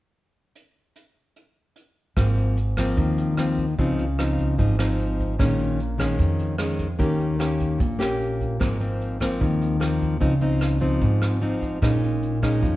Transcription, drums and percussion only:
0.55 closed hi-hat soft
0.96 closed hi-hat soft
1.36 closed hi-hat soft
1.76 closed hi-hat soft
2.17 kick soft
2.17 cross-stick soft
2.17 closed hi-hat soft
2.37 closed hi-hat soft
2.57 closed hi-hat soft
2.77 kick soft
2.77 cross-stick soft
2.77 closed hi-hat soft
2.97 kick soft
2.97 closed hi-hat soft
3.18 closed hi-hat soft
3.37 cross-stick soft
3.37 closed hi-hat soft
3.58 kick soft
3.58 closed hi-hat soft
3.78 kick soft
3.78 closed hi-hat soft
3.99 closed hi-hat soft
4.19 cross-stick soft
4.19 closed hi-hat soft
4.39 kick soft
4.39 closed hi-hat soft
4.59 kick soft
4.59 closed hi-hat soft
4.79 cross-stick soft
4.79 closed hi-hat soft
5.00 closed hi-hat soft
5.20 kick soft
5.20 closed hi-hat soft
5.40 kick soft
5.40 cross-stick soft
5.40 closed hi-hat soft
5.60 closed hi-hat soft
5.80 closed hi-hat soft
5.99 kick soft
5.99 cross-stick soft
5.99 closed hi-hat soft
6.19 kick soft
6.19 closed hi-hat soft
6.39 closed hi-hat soft
6.58 cross-stick soft
6.58 closed hi-hat soft
6.79 kick soft
6.79 closed hi-hat soft
6.99 kick soft
6.99 closed hi-hat soft
7.20 closed hi-hat soft
7.40 cross-stick soft
7.40 closed hi-hat soft
7.60 kick soft
7.60 closed hi-hat soft
7.80 kick soft
7.80 closed hi-hat soft
8.01 cross-stick soft
8.01 closed hi-hat soft
8.21 closed hi-hat soft
8.41 kick soft
8.41 closed hi-hat soft
8.61 kick soft
8.61 cross-stick soft
8.61 closed hi-hat soft
8.81 closed hi-hat soft
9.01 closed hi-hat soft
9.21 kick soft
9.21 cross-stick soft
9.21 closed hi-hat soft
9.41 kick soft
9.41 closed hi-hat soft
9.61 closed hi-hat soft
9.81 cross-stick soft
9.81 closed hi-hat soft
10.01 kick soft
10.01 closed hi-hat soft
10.21 kick soft
10.21 closed hi-hat soft
10.41 closed hi-hat soft
10.61 cross-stick soft
10.61 closed hi-hat soft
10.81 kick soft
10.81 closed hi-hat soft
11.02 kick soft
11.02 closed hi-hat soft
11.22 cross-stick soft
11.22 closed hi-hat soft
11.42 closed hi-hat soft
11.62 kick soft
11.62 closed hi-hat soft
11.82 kick soft
11.82 cross-stick soft
11.82 closed hi-hat soft
12.03 closed hi-hat soft
12.23 closed hi-hat soft
12.43 kick soft
12.43 cross-stick soft
12.43 closed hi-hat soft
12.63 kick soft
12.63 closed hi-hat soft

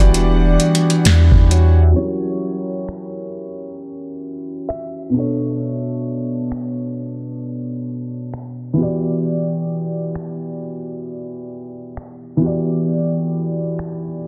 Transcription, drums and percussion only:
0.14 closed hi-hat medium
0.60 closed hi-hat medium
0.75 closed hi-hat medium
0.90 closed hi-hat medium
1.05 snare loud
1.05 closed hi-hat medium
1.31 kick medium
1.51 closed hi-hat medium
2.89 finger snap loud
4.70 finger snap loud
6.52 finger snap loud
8.34 finger snap loud
10.15 finger snap loud
11.97 finger snap loud
13.79 finger snap loud

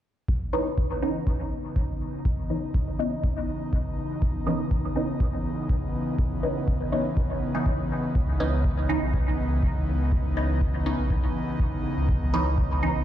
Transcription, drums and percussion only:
0.28 kick loud
0.78 kick loud
1.27 kick loud
1.76 kick loud
2.25 kick loud
2.74 kick loud
3.24 kick loud
3.73 kick medium
4.22 kick loud
4.71 kick loud
5.20 kick loud
5.69 kick loud
6.19 kick loud
6.68 kick loud
7.17 kick loud
7.66 kick loud
8.15 kick loud
8.64 kick loud
9.14 kick loud
9.63 kick loud
10.12 kick loud
10.61 kick medium
11.10 kick loud
11.60 kick medium
12.09 kick loud
12.58 kick medium

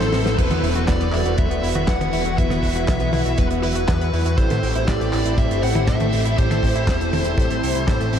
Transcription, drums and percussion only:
0.00 snare loud
0.00 closed hi-hat medium
0.13 snare loud
0.13 open hi-hat loud
0.26 snare medium
0.26 closed hi-hat soft
0.39 kick loud
0.39 closed hi-hat loud
0.39 crash loud
0.50 snare soft
0.50 closed hi-hat medium
0.50 high tom medium
0.64 open hi-hat loud
0.76 closed hi-hat medium
0.88 kick loud
0.88 snare loud
0.88 clap medium
0.88 closed hi-hat loud
1.01 closed hi-hat medium
1.12 clap medium
1.12 open hi-hat medium
1.26 closed hi-hat medium
1.38 kick loud
1.38 closed hi-hat loud
1.51 closed hi-hat medium
1.63 open hi-hat loud
1.75 closed hi-hat medium
1.75 high tom medium
1.88 kick loud
1.88 snare loud
1.88 clap medium
1.88 closed hi-hat loud
2.01 closed hi-hat medium
2.01 high tom medium
2.13 open hi-hat loud
2.26 closed hi-hat medium
2.38 kick loud
2.38 closed hi-hat loud
2.50 snare soft
2.50 closed hi-hat medium
2.50 high tom medium
2.63 kick medium
2.63 open hi-hat loud
2.75 closed hi-hat medium
2.88 kick loud
2.88 snare loud
2.88 clap medium
2.88 closed hi-hat loud
3.00 closed hi-hat medium
3.13 open hi-hat loud
3.13 high tom medium
3.26 closed hi-hat medium
3.38 kick loud
3.38 closed hi-hat loud
3.51 closed hi-hat medium
3.63 open hi-hat loud
3.75 closed hi-hat medium
3.88 kick loud
3.88 snare loud
3.88 clap medium
3.88 closed hi-hat loud
4.01 closed hi-hat medium
4.13 open hi-hat medium
4.26 closed hi-hat medium
4.38 kick loud
4.38 closed hi-hat loud
4.50 snare soft
4.50 closed hi-hat medium
4.50 high tom medium
4.63 open hi-hat medium
4.75 closed hi-hat medium
4.88 kick loud
4.88 snare loud
4.88 clap medium
4.88 closed hi-hat medium
5.01 closed hi-hat medium
5.13 clap medium
5.13 open hi-hat loud
5.25 closed hi-hat medium
5.38 kick loud
5.38 closed hi-hat medium
5.51 closed hi-hat medium
5.63 open hi-hat loud
5.75 closed hi-hat medium
5.75 high tom medium
5.88 kick loud
5.88 snare loud
5.88 clap medium
5.88 closed hi-hat loud
6.00 closed hi-hat medium
6.00 high tom medium
6.13 open hi-hat medium
6.25 closed hi-hat medium
6.38 kick loud
6.38 closed hi-hat loud
6.50 snare soft
6.50 closed hi-hat medium
6.50 high tom medium
6.63 kick medium
6.63 open hi-hat loud
6.76 closed hi-hat medium
6.87 kick loud
6.87 snare loud
6.87 clap loud
6.87 closed hi-hat loud
7.01 closed hi-hat medium
7.13 open hi-hat loud
7.13 high tom medium
7.24 closed hi-hat medium
7.38 kick loud
7.38 closed hi-hat loud
7.50 closed hi-hat medium
7.63 open hi-hat loud
7.75 closed hi-hat medium
7.88 kick loud
7.88 snare loud
7.88 clap medium
7.88 closed hi-hat medium
8.01 closed hi-hat medium
8.13 open hi-hat loud

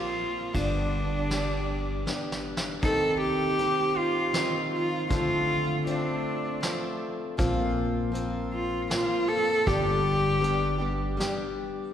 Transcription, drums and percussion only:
0.55 kick medium
0.55 ride soft
1.31 snare medium
1.31 ride soft
2.07 snare soft
2.32 snare medium
2.57 snare medium
2.82 kick loud
2.82 closed hi-hat medium
3.59 closed hi-hat medium
4.34 snare medium
4.34 closed hi-hat medium
5.10 kick medium
5.10 closed hi-hat medium
5.87 closed hi-hat medium
6.63 snare medium
6.63 closed hi-hat medium
7.39 kick loud
7.39 closed hi-hat medium
8.15 closed hi-hat medium
8.91 snare medium
8.91 closed hi-hat medium
9.67 kick loud
9.67 closed hi-hat medium
10.44 closed hi-hat medium
11.20 snare medium
11.20 closed hi-hat medium

